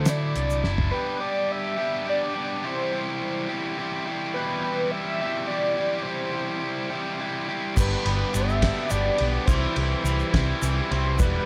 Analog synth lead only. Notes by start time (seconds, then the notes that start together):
Already playing: C5
0.09 D5
0.91 B4
1.20 D5
1.52 E5
2.09 D5
2.66 C5
4.34 B4
4.91 E5
5.47 D5
6.03 C5
7.80 B4
8.36 E5
8.91 D5
9.45 C5
11.19 B4